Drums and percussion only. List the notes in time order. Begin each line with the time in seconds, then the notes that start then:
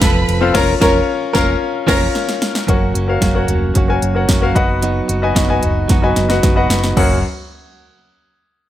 0.01 kick, snare, ride
0.29 ride
0.55 kick, snare, crash
0.82 kick, snare
1.35 kick, snare
1.88 kick, snare, crash
2.15 snare
2.29 snare
2.42 snare
2.55 snare
2.68 kick, closed hi-hat
2.95 closed hi-hat
3.22 kick, snare, closed hi-hat
3.48 closed hi-hat, floor tom
3.75 kick, closed hi-hat
4.02 closed hi-hat
4.29 kick, snare, closed hi-hat
4.56 kick, closed hi-hat
4.83 closed hi-hat
5.09 closed hi-hat
5.36 kick, snare, closed hi-hat
5.63 closed hi-hat, floor tom
5.89 kick, snare, closed hi-hat
6.16 snare, closed hi-hat
6.30 snare
6.43 kick, snare, closed hi-hat
6.70 snare, closed hi-hat
6.84 snare
6.97 kick, floor tom, crash